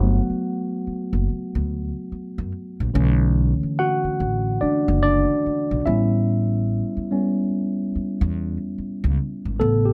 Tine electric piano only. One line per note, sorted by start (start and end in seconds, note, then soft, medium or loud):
0.00 1.23 F#3 medium
0.00 1.24 A3 medium
0.00 1.24 B3 medium
0.00 1.65 F#4 medium
0.00 1.63 F#5 medium
2.94 3.53 D3 medium
2.94 3.53 E3 medium
2.94 3.53 A3 medium
2.94 3.53 C#4 medium
3.79 4.58 F#4 medium
3.79 4.64 F#5 loud
4.61 5.00 D4 medium
4.61 5.01 D5 medium
5.03 5.82 D4 medium
5.03 5.82 D5 loud
5.86 7.07 G3 medium
5.86 7.07 B3 medium
5.86 7.07 C#4 medium
5.86 8.74 E4 medium
5.86 8.73 E5 medium
7.11 7.48 G3 medium
7.11 7.49 B3 soft
7.11 7.49 C#4 medium
9.59 9.93 C#3 medium
9.59 9.93 A3 soft
9.59 9.93 B3 medium
9.59 9.87 A4 medium
9.85 9.93 G4 medium